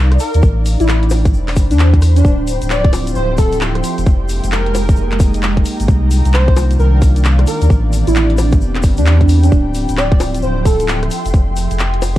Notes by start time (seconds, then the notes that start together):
Already playing: C2 D#4 D5 F5 A#5
0.12 cross-stick, closed hi-hat
0.19 A#4, open hi-hat, shaker
0.34 D#2, closed hi-hat, shaker
0.43 A1 D4, kick, shaker
0.66 open hi-hat, shaker
0.74 G5
0.80 A1 E4, closed hi-hat, shaker
0.85 C5, cross-stick, clap
0.89 shaker
1.03 closed hi-hat
1.10 open hi-hat, high bongo, shaker
1.24 B5, kick, closed hi-hat, shaker
1.34 E1, shaker
1.48 cross-stick, clap, open hi-hat
1.56 G1, kick, open hi-hat, shaker
1.71 E2 D4, closed hi-hat, shaker
1.79 clap, shaker
1.94 kick, closed hi-hat
2.02 cross-stick, open hi-hat, shaker
2.16 D4, closed hi-hat, shaker
2.24 D1 F3 C4 E4 F4 G4, kick, shaker
2.47 open hi-hat, shaker
2.62 D1, closed hi-hat, shaker
2.70 D5, clap, shaker
2.84 E5, kick, closed hi-hat
2.93 open hi-hat, high bongo, shaker
3.07 C6, closed hi-hat, shaker
3.15 D1 C5, shaker
3.38 A4, kick, open hi-hat, shaker
3.52 closed hi-hat, shaker
3.61 clap, shaker
3.75 cross-stick, closed hi-hat
3.84 open hi-hat, shaker
3.98 F1, closed hi-hat, shaker
4.06 F1 G#3 A#3 D#4 G#4, kick, shaker
4.29 open hi-hat, shaker
4.44 F1, closed hi-hat, shaker
4.52 A#4, clap, shaker
4.66 D#5, closed hi-hat
4.75 open hi-hat, high bongo, shaker
4.89 A#5, kick, closed hi-hat, shaker
4.96 F1, shaker
5.12 cross-stick, clap, closed hi-hat
5.20 kick, open hi-hat, shaker
5.34 closed hi-hat, shaker
5.43 clap, shaker
5.57 kick, closed hi-hat
5.65 open hi-hat, shaker
5.80 G#1, closed hi-hat, shaker
5.88 C2 D#3 D4 F4, kick, shaker
6.11 open hi-hat, shaker
6.25 C2, closed hi-hat, shaker
6.34 C5, clap, shaker
6.48 D5, kick, closed hi-hat
6.56 open hi-hat, high bongo, shaker
6.71 F5, closed hi-hat, shaker
6.79 C2 A#4, shaker
7.02 kick, open hi-hat, shaker
7.16 closed hi-hat, shaker
7.25 clap, shaker
7.39 cross-stick, closed hi-hat
7.47 A#4, open hi-hat, shaker
7.62 D#2, closed hi-hat, shaker
7.70 A1 B3 C4 D4 G4, kick, shaker
7.93 open hi-hat, shaker
8.07 A1 E4, closed hi-hat, shaker
8.15 clap, shaker
8.30 closed hi-hat
8.38 open hi-hat, high bongo, shaker
8.52 G5 B5, kick, closed hi-hat, shaker
8.61 E1, shaker
8.75 cross-stick, clap, closed hi-hat
8.83 G1, kick, open hi-hat, shaker
8.97 E2 D4, closed hi-hat, shaker
9.06 clap, shaker
9.21 kick, closed hi-hat
9.29 open hi-hat, shaker
9.43 D4, closed hi-hat, shaker
9.52 D1 F3 C4 E4 F4, kick, shaker
9.74 open hi-hat, shaker
9.89 D1, closed hi-hat, shaker
9.97 D5, clap, shaker
10.12 kick, closed hi-hat
10.16 E5 C6, open hi-hat, high bongo, shaker
10.35 closed hi-hat, shaker
10.42 D1 C5, shaker
10.65 A4, kick, open hi-hat, shaker
10.80 closed hi-hat, shaker
10.88 clap, shaker
11.03 cross-stick, closed hi-hat
11.11 open hi-hat, shaker
11.25 F1, closed hi-hat, shaker
11.33 F1 G#4, kick, shaker
11.56 open hi-hat, shaker
11.71 F1, closed hi-hat, shaker
11.79 clap, shaker
11.84 D#5
11.94 closed hi-hat
12.02 open hi-hat, high bongo, shaker